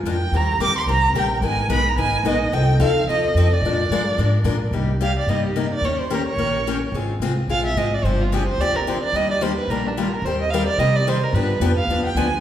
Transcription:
0.03 F2 F3 G#3 D4 F4 A#4
0.10 G5
0.32 D#2 D#3 G3 C4 G4 A#4
0.36 A#5
0.59 D2 D#3 G3 C4 G4 A#4
0.63 D6
0.78 C6
0.86 C2 D#3 G3 C4 G4 A#4 A#5
1.14 A#1 D#3 G3 C4 G4 A#4
1.18 G5
1.41 G#1 D#3 G#3 B3 D#4 A#4
1.45 G#5
1.69 B1 D#3 G#3 B3 D#4 A#4 B5
1.88 A#5
1.96 G#1 D#3 G#3 B3 D#4 A#4 G#5
2.24 A#1 D#3 G#3 B3 D#4 A#4
2.28 D#5
2.52 C2 F3 C4 D#4 A4 G5
2.79 D2 F3 C4 D#4 A4 F5
3.07 D#2 F3 C4 D#4 A4 D#5
3.25 D#5
3.34 F2 F3 C4 D#4 A4
3.53 D5
3.62 A#2 F3 F4
3.66 G#3 D4 A#4
3.90 G2 F3 G#3 D4 F4 A#4
4.18 G#2 F3 G#3 D4 F4 A#4
4.44 A#2 F3 G#3 D4 F4 A#4
4.71 C2 C3 G3 A#3 D#4 G4
5.01 C3 G3 A#3 D#4 G4 F5
5.19 D5
5.27 G2 C3 G3 A#3 D#4 G4 D#5
5.46 G4
5.56 C3 G3 A#3 D#4 G4 A#4
5.74 D5
5.81 D#2 D#3 A#3 C#4 G4 A#4
5.85 C#5
5.99 C5
6.10 D#3 A#3 C#4 G4 A#4
6.29 C#5
6.36 A#1 D#3 A#3 C#4 G4 A#4
6.67 D#3 A#3 C#4 G4 A#4
6.92 G#1 G#3 C4 F4 G#4
7.20 C2 G#3 C4 F4 G#4
7.48 A#1 G#3 C4 F4 G#4 F5
7.66 E5
7.74 G#1 G#3 C4 F4 G#4 D#5
7.94 D5
8.03 G1 C3 F3 C4 D4 G4 C5
8.21 F4
8.32 C3 F3 C4 D4 G4 G#4
8.48 C5
8.58 D2 C3 F3 C4 G4 D5
8.62 D4
8.76 A#4
8.87 C3 F3 C4 D4 G4 C5
9.03 D5
9.13 D#2 D#3 G3 A#3 D4 G4 D#5
9.31 D5
9.41 D#3 G3 A#3 D4 G4 C5
9.58 B4
9.68 A#1 D#3 G3 A#3 D4 G4 A#4
9.87 D4
9.97 D#3 G3 A#3 D4 F4 G4
10.13 A#4
10.22 D#2 D#3 C4 C5
10.26 G3 G4 A#4
10.41 D#5
10.50 D#3 G3 C4 A#4 F5
10.54 G4
10.67 D5
10.78 C3 D#3 G3 C4 G4 A#4 D#5
10.96 D5
11.07 D#3 G3 C4 G4 A#4 C5
11.24 A#4
11.33 G2 D3 F3 B3 D4 G4 B4
11.60 F2 D3 F3 B3 D4 G4
11.77 F5
11.87 D#2 D3 F3 B3 D4 G4
12.05 G5
12.15 D2 D3 F3 B3 D4 G4 G#5

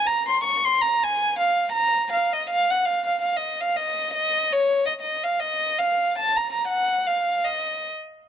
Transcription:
0.07 A#5
0.28 C6
0.44 C#6
0.65 C6
0.81 A#5
1.03 G#5
1.39 F5
1.72 A#5
2.12 F5
2.33 D#5
2.50 F5
2.71 F#5
2.86 F5
3.06 F5
3.22 F5
3.37 D#5
3.61 F5
3.76 D#5
4.14 D#5
4.52 C#5
4.86 D#5
5.01 D#5
5.24 F5
5.40 D#5
5.79 F5
6.19 A5
6.36 A#5
6.52 A#5
6.68 F#5
7.07 F5
7.45 D#5

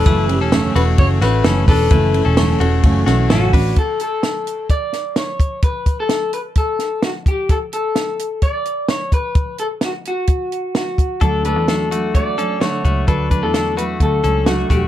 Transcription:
Already playing: A4 D6
0.06 F#1 F#2 C#3 E3 A3 C#4 E4 B4 E6, kick, hi-hat pedal, ride
0.29 E3 A3 C#4 G4, ride
0.40 E1 C#4 A4
0.52 F#2 C#3 E3 A3 C#4, snare, ride
0.75 E1 E3 A3 C#4 F#4 B4, ride
0.98 F#1 C#3 E3 A3 C#4 C#5, kick, ride
1.21 A1 E3 A3 C#4 F#4 B4, snare, ride
1.44 F#1 F#2 C#3 E3 A3 C#4 A4, snare, ride
1.67 E1 E3 A3 C#4 D4 A4 B4, kick, open hi-hat, ride
1.90 F#1 F#2 C#3 E3 A3 C#4 E4 B4, kick, hi-hat pedal, ride
2.14 E3 A3 C#4, ride
2.25 E1 C#4 A4
2.37 F#2 C#3 E3 A3 C#4 C#6, snare, ride
2.60 E1 E3 A3 C#4 F#4, ride
2.83 F#1 C#3 E3 A3 C#4, kick, ride
3.06 B1 E3 A3 C#4 F#4, snare, ride
3.30 A1 F#2 C#3 E3 A3 C#4 F#4 A4, snare, ride
3.53 A1 E3 A3 C#4 D4 B4, kick, open hi-hat, ride
3.76 A4, kick, closed hi-hat
3.99 A4, closed hi-hat
4.23 snare, closed hi-hat
4.47 closed hi-hat
4.69 D5, kick, closed hi-hat
4.93 snare, closed hi-hat
5.16 C#5, snare, closed hi-hat
5.40 kick, closed hi-hat
5.62 B4, kick, closed hi-hat
5.86 kick, closed hi-hat
6.00 A4
6.09 snare, closed hi-hat
6.33 B4, closed hi-hat
6.55 A4, kick, closed hi-hat
6.79 snare, closed hi-hat
7.02 F#4, snare, closed hi-hat
7.26 G4, kick, closed hi-hat
7.49 A4, kick, closed hi-hat
7.73 A4, closed hi-hat
7.96 snare, closed hi-hat
8.19 closed hi-hat
8.42 D5, kick, closed hi-hat
8.65 closed hi-hat
8.88 C#5, snare, closed hi-hat
9.12 B4, kick, closed hi-hat
9.35 kick, closed hi-hat
9.58 A4, closed hi-hat
9.81 F#4, snare, closed hi-hat
10.05 F#4, closed hi-hat
10.27 kick, closed hi-hat
10.52 closed hi-hat
10.75 F#4, snare, closed hi-hat
10.98 kick, closed hi-hat
11.21 D2 D3 F#3 A3 D4 A4, kick, closed hi-hat
11.44 F#3 A3 D4 A4 B4, closed hi-hat
11.56 E2
11.68 D3 F#3 A3 D4 A4, snare, closed hi-hat
11.91 F#3 A3 D4 F#4, closed hi-hat
12.14 D3 F#3 A3 D4 D5, kick, closed hi-hat
12.38 F#3 A3 C#4 D4 A4, closed hi-hat
12.60 D3 F#3 A3 D4 F#4 C#5, snare, closed hi-hat
12.84 C#2 F#3 A3 D4 F#4, kick, closed hi-hat
13.07 D2 D3 F#3 A3 D4 A4 B4, kick, closed hi-hat
13.30 F#3 A3 D4 B4, kick, closed hi-hat
13.43 E2 A4
13.54 D3 F#3 A3 D4 A4, snare, closed hi-hat
13.76 F#3 A3 D4 F#4 B4, closed hi-hat
14.00 D2 D3 F#3 A3 D4 A4, kick, closed hi-hat
14.23 C#2 F#3 A3 C#4 D4 A4, closed hi-hat
14.46 D3 F#3 A3 D4 F#4, snare, closed hi-hat
14.70 E1 F#3 A3 D4 F#4 G4, kick, closed hi-hat

